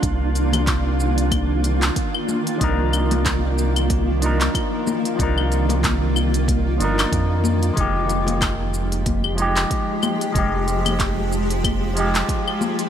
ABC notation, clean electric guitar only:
X:1
M:4/4
L:1/8
Q:"Swing 16ths" 1/4=93
K:Cm
V:1 name="Clean electric guitar"
z8 | [F,DEB]4- [F,DEB] [F,DEB]3 | [F,DEB]4- [F,DEB] [F,DEB]3 | [F,A,EG]4- [F,A,EG] [F,A,EG]3 |
[F,A,EG]4- [F,A,EG] [F,A,EG]3 |]